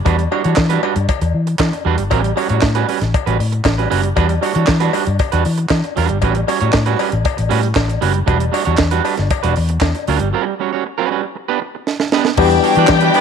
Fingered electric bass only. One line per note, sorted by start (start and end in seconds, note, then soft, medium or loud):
0.06 0.26 E2 medium
0.45 0.55 E3 medium
0.58 0.77 E3 medium
0.96 1.06 G2 medium
1.22 1.31 E2 medium
1.35 1.54 E3 medium
1.60 1.70 E3 medium
1.86 1.96 E2 medium
1.99 2.08 G1 medium
2.12 2.31 A1 loud
2.50 2.60 A2 loud
2.63 2.83 A2 medium
3.02 3.11 A1 medium
3.27 3.37 A1 medium
3.40 3.60 A2 medium
3.65 3.85 A1 medium
3.91 4.11 F#1 medium
4.17 4.37 E2 loud
4.56 4.66 E3 medium
4.69 4.88 E3 medium
5.07 5.17 G2 medium
5.33 5.43 E2 medium
5.46 5.65 E3 medium
5.71 5.81 E3 medium
5.98 6.07 E2 medium
6.10 6.20 G1 medium
6.23 6.42 A1 loud
6.62 6.71 A2 medium
6.74 6.94 A2 medium
7.13 7.23 A1 medium
7.39 7.48 A1 medium
7.52 7.71 A2 medium
7.76 7.96 A1 medium
8.03 8.22 F#1 medium
8.28 8.48 E1 loud
8.67 8.77 E2 medium
8.80 8.99 E2 medium
9.19 9.29 G1 medium
9.44 9.54 E1 medium
9.57 9.77 E2 loud
9.82 9.92 E2 medium
10.08 10.18 D2 loud
10.21 10.31 G1 medium
12.38 12.58 E2 loud
12.77 12.86 E3 loud
12.90 13.09 E3 loud